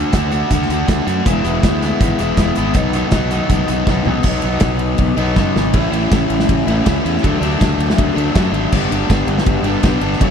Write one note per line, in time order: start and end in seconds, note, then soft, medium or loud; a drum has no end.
0.00 0.11 D3 medium
0.00 0.12 A3 medium
0.00 0.11 D4 medium
0.00 0.12 F#4 loud
0.12 0.40 D2 medium
0.12 0.30 D3 medium
0.12 0.31 A3 loud
0.12 0.31 D4 loud
0.12 0.31 F#4 loud
0.12 kick loud
0.12 snare loud
0.12 closed hi-hat medium
0.31 0.50 D3 medium
0.31 0.50 A3 medium
0.31 0.51 D4 medium
0.31 0.52 F#4 loud
0.31 closed hi-hat medium
0.51 0.65 D2 loud
0.51 0.69 D3 medium
0.51 0.70 A3 loud
0.51 0.70 D4 medium
0.51 0.70 F#4 loud
0.51 kick loud
0.51 closed hi-hat loud
0.62 snare soft
0.69 0.83 D2 medium
0.69 0.87 D3 medium
0.69 0.87 A3 medium
0.69 0.87 D4 medium
0.69 0.88 F#4 medium
0.69 closed hi-hat medium
0.88 1.02 D2 medium
0.88 1.04 D3 medium
0.88 1.05 A3 medium
0.88 1.06 D4 loud
0.88 1.06 F#4 medium
0.88 kick loud
0.88 snare loud
0.88 closed hi-hat medium
1.06 1.21 F#2 medium
1.06 1.24 D3 medium
1.06 1.25 A3 medium
1.06 1.25 D4 loud
1.06 1.25 F#4 medium
1.06 closed hi-hat medium
1.26 1.40 E1 medium
1.26 1.43 E3 medium
1.26 1.45 G#3 medium
1.26 1.45 B3 medium
1.26 1.45 E4 loud
1.26 kick loud
1.26 closed hi-hat loud
1.44 1.58 E1 medium
1.44 1.63 E3 medium
1.44 1.64 G#3 medium
1.44 1.64 B3 medium
1.44 1.64 E4 medium
1.44 closed hi-hat medium
1.63 1.90 D2 medium
1.63 1.81 E3 loud
1.63 1.83 G#3 loud
1.63 1.83 B3 loud
1.63 1.83 E4 loud
1.63 kick loud
1.63 snare loud
1.63 closed hi-hat loud
1.82 2.00 E3 medium
1.82 2.02 G#3 medium
1.82 2.02 B3 medium
1.82 2.02 E4 medium
1.82 closed hi-hat medium
2.00 2.14 G#1 medium
2.00 2.18 E3 medium
2.00 2.19 G#3 medium
2.00 2.20 B3 loud
2.00 2.20 E4 loud
2.00 kick loud
2.00 closed hi-hat loud
2.19 2.33 E1 medium
2.19 2.37 E3 medium
2.19 2.38 G#3 medium
2.19 2.39 B3 medium
2.19 2.38 E4 loud
2.19 closed hi-hat medium
2.37 2.51 E1 medium
2.37 2.55 E3 medium
2.37 2.57 G#3 loud
2.37 2.58 B3 loud
2.37 2.57 E4 loud
2.37 kick loud
2.37 snare loud
2.37 closed hi-hat medium
2.55 2.71 G#1 medium
2.55 2.75 E3 medium
2.55 2.75 G#3 medium
2.55 2.76 B3 loud
2.55 2.75 E4 medium
2.55 closed hi-hat medium
2.74 3.02 B1 medium
2.74 2.93 B2 medium
2.74 2.93 D#3 medium
2.74 2.94 F#3 medium
2.74 2.94 B3 loud
2.74 2.94 D#4 loud
2.74 kick loud
2.74 closed hi-hat medium
2.93 3.10 B2 medium
2.93 3.11 D#3 loud
2.93 3.11 F#3 loud
2.93 3.12 B3 loud
2.93 3.13 D#4 loud
2.93 closed hi-hat medium
3.11 3.39 B1 medium
3.11 3.30 B2 loud
3.11 3.30 D#3 loud
3.11 3.31 F#3 loud
3.11 3.31 B3 loud
3.11 3.32 D#4 loud
3.11 kick loud
3.11 snare loud
3.11 closed hi-hat medium
3.31 3.48 B2 medium
3.31 3.48 D#3 medium
3.31 3.49 F#3 medium
3.31 3.49 B3 medium
3.31 3.49 D#4 medium
3.31 closed hi-hat medium
3.49 3.63 B1 loud
3.49 3.67 B2 medium
3.49 3.68 D#3 medium
3.49 3.68 F#3 loud
3.49 3.69 B3 loud
3.49 3.69 D#4 loud
3.49 kick loud
3.49 closed hi-hat medium
3.68 3.82 B1 medium
3.68 3.87 B2 medium
3.68 3.87 D#3 loud
3.68 3.88 F#3 loud
3.68 3.88 B3 loud
3.68 3.89 D#4 loud
3.68 closed hi-hat medium
3.87 4.01 B1 medium
3.87 4.05 B2 medium
3.87 4.06 D#3 medium
3.87 4.06 F#3 loud
3.87 4.07 B3 loud
3.87 4.07 D#4 medium
3.87 kick loud
3.87 snare medium
4.05 4.20 B1 medium
4.05 4.23 B2 medium
4.05 4.24 D#3 medium
4.05 4.24 F#3 loud
4.05 4.25 B3 loud
4.05 4.25 D#4 medium
4.05 floor tom medium
4.23 4.41 B1 medium
4.23 5.17 B2 medium
4.23 5.17 F#3 medium
4.23 5.16 B3 medium
4.23 kick loud
4.23 crash loud
4.28 5.15 D#4 loud
4.42 4.60 B1 medium
4.42 ride medium
4.60 4.94 B1 loud
4.60 kick loud
4.60 snare loud
4.60 ride loud
4.79 ride medium
4.98 5.15 B1 loud
4.98 kick loud
4.98 ride loud
5.16 5.34 B1 medium
5.16 5.35 B2 medium
5.16 5.36 F#3 medium
5.16 5.36 B3 medium
5.16 5.35 D#4 medium
5.16 ride medium
5.36 5.53 F#2 medium
5.36 5.73 B2 medium
5.36 5.74 F#3 medium
5.36 5.74 B3 medium
5.36 5.75 D#4 medium
5.36 kick loud
5.36 snare medium
5.56 5.72 G#1 medium
5.56 snare medium
5.73 5.87 A1 loud
5.73 6.10 A2 loud
5.73 6.11 E3 loud
5.73 5.93 A3 medium
5.73 5.91 C#4 medium
5.73 5.90 E4 loud
5.73 kick loud
5.73 ride loud
5.91 6.06 A1 medium
5.91 6.13 A3 medium
5.91 6.12 C#4 medium
5.91 6.13 E4 medium
5.91 ride medium
6.11 6.25 A1 medium
6.11 6.86 A2 loud
6.11 6.84 E3 loud
6.11 6.70 A3 loud
6.11 6.68 C#4 loud
6.11 6.66 E4 loud
6.11 kick loud
6.11 snare loud
6.11 ride loud
6.30 6.43 A1 loud
6.30 ride medium
6.40 snare medium
6.49 6.62 A1 loud
6.49 kick loud
6.49 ride loud
6.67 6.80 A1 medium
6.67 6.85 A3 medium
6.67 6.85 C#4 medium
6.67 6.86 E4 medium
6.67 ride medium
6.85 6.99 C#2 medium
6.85 7.22 E3 medium
6.85 7.07 A3 medium
6.85 7.05 C#4 medium
6.85 7.03 E4 medium
6.85 kick loud
6.85 snare loud
6.85 ride loud
7.04 7.18 E2 medium
7.04 7.23 A3 medium
7.04 7.23 C#4 medium
7.04 7.22 E4 medium
7.04 ride medium
7.17 snare soft
7.22 7.37 D2 medium
7.22 7.57 D3 loud
7.22 7.43 F#3 medium
7.22 7.42 A3 medium
7.22 7.40 D4 loud
7.22 kick loud
7.22 ride loud
7.41 7.54 D2 medium
7.41 7.59 F#3 medium
7.41 7.60 A3 medium
7.41 7.61 D4 medium
7.41 ride medium
7.59 7.74 D2 medium
7.59 8.34 D3 medium
7.59 8.18 F#3 loud
7.59 8.17 A3 loud
7.59 8.15 D4 loud
7.59 kick loud
7.59 snare loud
7.59 ride loud
7.78 7.91 D2 loud
7.78 ride medium
7.90 snare medium
7.98 8.11 D2 loud
7.98 kick loud
7.98 ride loud
8.16 8.29 D2 loud
8.16 8.35 F#3 medium
8.16 8.36 A3 medium
8.16 8.36 D4 medium
8.16 ride medium
8.35 8.48 F#2 loud
8.35 8.71 D3 medium
8.35 8.54 F#3 medium
8.35 8.53 A3 medium
8.35 8.51 D4 medium
8.35 kick loud
8.35 snare loud
8.35 ride loud
8.52 8.65 G#1 medium
8.52 8.72 F#3 medium
8.52 8.74 A3 medium
8.52 8.71 D4 medium
8.52 ride medium
8.72 8.86 G1 loud
8.72 9.08 G2 loud
8.72 9.09 D3 medium
8.72 8.93 G3 loud
8.72 8.92 B3 loud
8.72 8.89 D4 loud
8.72 kick loud
8.72 crash loud
8.90 9.03 G1 medium
8.90 9.09 G3 medium
8.90 9.10 B3 medium
8.90 9.10 D4 medium
8.90 ride medium
9.09 9.22 G1 loud
9.09 9.84 G2 loud
9.09 9.82 D3 loud
9.09 9.68 G3 loud
9.09 9.66 B3 loud
9.09 9.64 D4 loud
9.09 kick loud
9.09 snare loud
9.09 ride loud
9.27 9.40 G1 loud
9.27 ride medium
9.38 snare medium
9.46 9.59 G1 loud
9.46 kick loud
9.46 ride loud
9.63 9.76 G1 loud
9.63 9.85 D4 medium
9.63 ride medium
9.68 9.84 G3 medium
9.68 9.84 B3 medium
9.83 9.96 B1 medium
9.83 10.20 D3 medium
9.83 10.04 G3 medium
9.83 10.03 B3 medium
9.83 10.01 D4 medium
9.83 kick loud
9.83 snare loud
9.83 ride loud
10.01 10.14 G1 medium
10.01 10.21 B3 medium
10.01 10.20 D4 medium
10.01 ride medium
10.05 10.21 G3 medium
10.13 snare soft
10.20 10.30 F#1 medium
10.20 10.30 F#2 loud
10.20 10.30 C#3 medium
10.20 10.30 F#3 loud
10.20 10.30 A3 loud
10.20 10.30 C#4 loud
10.20 kick loud
10.20 ride loud